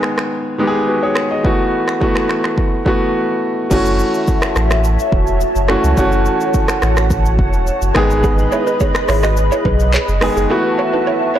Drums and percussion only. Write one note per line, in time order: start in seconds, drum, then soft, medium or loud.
0.03 finger snap medium
0.03 cross-stick medium
0.18 finger snap medium
0.18 cross-stick medium
1.15 finger snap medium
1.15 cross-stick loud
1.45 kick loud
1.88 finger snap medium
1.88 cross-stick medium
2.01 kick medium
2.16 finger snap medium
2.16 cross-stick medium
2.29 finger snap medium
2.29 cross-stick medium
2.44 finger snap medium
2.44 cross-stick medium
2.58 kick loud
2.86 kick medium
3.71 kick loud
3.71 crash medium
3.71 shaker medium
3.86 shaker medium
3.99 shaker medium
4.14 shaker soft
4.27 kick medium
4.27 shaker medium
4.42 finger snap medium
4.42 cross-stick loud
4.42 shaker medium
4.56 finger snap medium
4.56 cross-stick medium
4.56 shaker medium
4.71 finger snap medium
4.71 cross-stick loud
4.71 shaker soft
4.84 shaker medium
4.99 shaker medium
5.12 kick loud
5.27 shaker soft
5.41 shaker medium
5.56 shaker medium
5.68 finger snap medium
5.68 cross-stick loud
5.84 shaker medium
5.97 kick loud
5.97 shaker medium
6.12 shaker medium
6.26 shaker medium
6.41 shaker soft
6.54 kick medium
6.54 shaker medium
6.68 finger snap medium
6.68 cross-stick loud
6.68 shaker medium
6.82 finger snap medium
6.82 cross-stick medium
6.82 shaker medium
6.97 finger snap medium
6.97 cross-stick medium
6.97 shaker soft
7.10 kick loud
7.10 shaker medium
7.26 shaker medium
7.39 kick loud
7.53 shaker soft
7.67 shaker medium
7.82 shaker medium
7.95 finger snap medium
7.95 kick loud
7.95 cross-stick loud
8.11 shaker medium
8.24 kick loud
8.24 shaker medium
8.38 shaker medium
8.52 shaker medium
8.67 shaker soft
8.80 kick medium
8.80 shaker medium
8.95 finger snap medium
8.95 cross-stick loud
8.95 shaker medium
9.09 finger snap medium
9.09 cross-stick medium
9.09 open hi-hat medium
9.09 shaker medium
9.23 finger snap medium
9.23 cross-stick medium
9.23 shaker soft
9.37 shaker medium
9.52 shaker medium
9.65 kick medium
9.80 shaker soft
9.93 clap loud
9.93 shaker medium
10.08 shaker medium
10.21 finger snap medium
10.21 cross-stick loud
10.21 open hi-hat medium
10.37 shaker medium